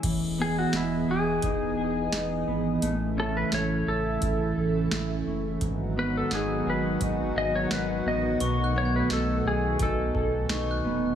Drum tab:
CC |x-------|--------|--------|--------|
HH |x-x-x-x-|x-x-x-x-|x-x-x-x-|x-x-x-x-|
SD |--o---o-|--o---o-|--o---o-|--o---o-|
BD |o---o---|----o---|o---o---|----oo--|